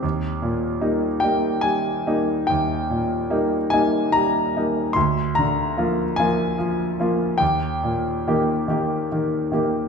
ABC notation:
X:1
M:12/8
L:1/8
Q:3/8=49
K:Eb
V:1 name="Grand piano"
z3 g a2 g3 a b2 | c' b2 a3 g4- g z |]
V:2 name="Grand piano" clef=bass
E,, B,, [G,B,E] [G,B,E] G, [G,B,E] E,, B,, [G,B,E] [G,B,E] G, [G,B,E] | D,, D, [F,B,F] [F,B,F] F, [F,B,F] E,, B,, [E,B,G] [E,B,G] E, [E,B,G] |]